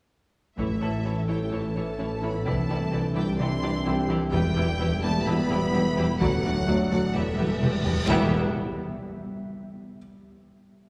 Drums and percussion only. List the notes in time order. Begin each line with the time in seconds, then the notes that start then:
0.58 taiko
2.46 taiko
4.34 taiko
4.80 taiko low
6.21 taiko
6.68 taiko low
7.38 taiko low-mid
7.61 taiko mid
7.85 taiko low
8.09 taiko